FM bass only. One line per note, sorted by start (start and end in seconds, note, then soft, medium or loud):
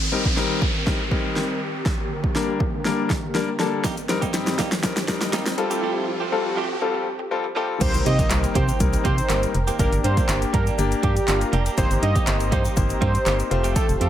7.81 7.90 C2 loud
7.94 8.02 C2 loud
8.06 8.22 C3 loud
8.31 8.47 C2 loud
8.55 8.72 C3 loud
8.80 8.96 C2 loud
9.05 9.21 C3 medium
9.30 9.46 G1 medium
9.55 9.71 F1 loud
9.79 9.88 G1 loud
9.92 10.00 G1 loud
10.04 10.20 G2 medium
10.29 10.45 G1 loud
10.54 10.70 G2 loud
10.79 10.95 G1 loud
11.03 11.19 G2 loud
11.28 11.44 G1 medium
11.53 11.69 F1 loud
11.78 11.86 G1 loud
11.91 11.98 G1 loud
12.03 12.19 G2 loud
12.27 12.54 G1 loud
12.52 12.68 G2 loud
12.77 12.93 G1 loud
13.02 13.18 G2 loud
13.26 13.43 G1 loud
13.51 13.76 F1 medium
13.89 13.97 F1 loud
14.01 14.09 F2 medium